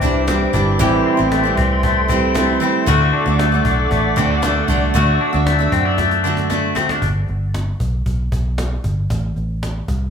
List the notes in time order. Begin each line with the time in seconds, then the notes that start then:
Already playing: E3 C4 G4 C5 E5 G5 D6
0.01 C2 E3 G3 D4 E4, cajon bass
0.27 E3 G3 C4 D4 E4, cajon slap
0.53 G1 E3 G3 D4 E4, cajon bass
0.79 A1 A2 E3 G3 C4 E4 G4 A4 G5 C6, cajon bass
1.06 C4
1.17 A1 G3 C4 E4
1.32 A3, cajon slap
1.43 G3 C4 E4
1.57 C2 C4, cajon bass
1.83 A3, cajon bass
2.08 E3 G3 C4 E4, cajon bass
2.34 E3 G3 A3 C4 E4, cajon slap
2.60 E3 G3 C4 E4
2.86 D2 D3 A3 D4 F#4 D5 F#5 D6, cajon bass
3.13 D4
3.26 D2 A3 D4 F#4
3.39 A3, cajon slap
3.52 A3 D4 F#4
3.65 B1 D4, cajon bass
3.91 A1 A3, cajon bass
4.16 D2 D3 A3 C4 D4 F#4, cajon bass
4.30 D4
4.42 D3 A3 D4 F#4, cajon slap
4.68 C2 D3 A3 D4 F#4, cajon bass
4.94 D2 D3 A3 D4 F#4 E6, cajon bass
5.21 D4
5.33 D2 A3 D4 F#4
5.46 A3, cajon slap
5.59 A3 D4 F#4
5.72 F#2 C4, cajon bass
5.85 D4
5.98 A3, cajon bass, cajon slap
6.11 cajon slap
6.24 D3 A3 D4 F#4
6.37 cajon slap
6.50 D3 A3 D4 F#4, cajon slap
6.75 D3 A3 C4 D4 F#4, cajon slap
6.89 D4, cajon slap
7.02 G1, cajon bass
7.27 G1, cajon slap
7.54 cajon slap
7.80 B1, cajon bass
8.06 B1, cajon bass
8.32 B1, cajon bass
8.58 cajon slap
8.84 G1, cajon bass
9.10 A1, cajon bass
9.36 A1, cajon slap
9.63 cajon slap
9.88 C2, cajon bass